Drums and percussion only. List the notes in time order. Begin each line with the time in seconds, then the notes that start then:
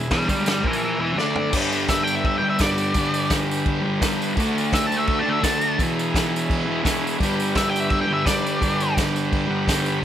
0.04 tambourine
0.11 kick, snare, tambourine, crash
0.22 tambourine
0.29 kick, tambourine
0.40 tambourine
0.46 snare, tambourine, crash
0.56 tambourine
0.64 kick
0.73 tambourine
1.18 snare
1.36 floor tom
1.53 kick, crash, tambourine
1.72 tambourine
1.88 kick, snare, tambourine, crash
2.07 tambourine
2.25 kick, crash
2.59 kick, snare, tambourine, crash
2.78 tambourine
2.94 kick, tambourine, crash
3.14 tambourine
3.30 kick, snare, tambourine, crash
3.51 tambourine
3.66 kick, crash
4.02 kick, snare, tambourine, crash
4.22 tambourine
4.37 kick, tambourine, crash
4.58 tambourine
4.73 kick, snare, tambourine, crash
4.92 tambourine
5.07 kick, crash
5.44 kick, snare, tambourine, crash
5.61 tambourine
5.79 kick, tambourine, crash
5.99 tambourine
6.15 kick, snare, tambourine, crash
6.36 tambourine
6.50 kick, crash
6.85 kick, snare, tambourine, crash
7.07 tambourine
7.20 kick, tambourine, crash
7.40 tambourine
7.55 kick, snare, tambourine, crash
7.76 tambourine
7.90 kick, crash
8.26 kick, snare, tambourine, crash
8.46 tambourine
8.62 kick, tambourine, crash
8.80 tambourine
8.97 kick, snare, tambourine, crash
9.16 tambourine
9.33 kick, crash
9.68 kick, snare, tambourine, crash
9.86 tambourine